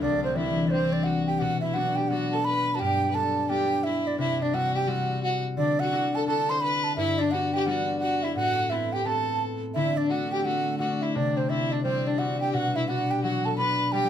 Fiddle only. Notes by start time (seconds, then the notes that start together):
0.02 D4
0.24 C4
0.36 E4
0.72 C4
1.05 F#4
1.28 G4
1.38 F#4 G4
1.63 E4
1.75 F#4
1.98 G4
2.11 F#4
2.33 A4
2.45 B4
2.76 F#4 G4
3.10 B4
3.15 A4
3.50 G4
3.84 E4
4.20 E4
4.41 D4
4.54 F#4
4.75 G4
4.87 F#4
5.23 F#4
5.58 D4
5.81 F#4
6.16 A4
6.28 A4
6.51 C5
6.63 B4
6.98 E4
7.21 D4
7.33 F#4
7.55 G4
7.68 F#4
8.02 F#4
8.24 E4
8.38 F#4
8.72 E4
8.94 G4
9.07 A4
9.75 E4
9.97 D4
10.10 F#4
10.32 G4
10.44 F#4
10.79 F#4
11.02 E4
11.15 D4
11.37 C4
11.49 E4
11.73 D4
11.84 C4
12.07 D4
12.18 F#4
12.41 G4
12.53 F#4
12.76 E4
12.88 F#4
13.10 G4
13.23 F#4
13.45 A4
13.58 B4
13.92 G4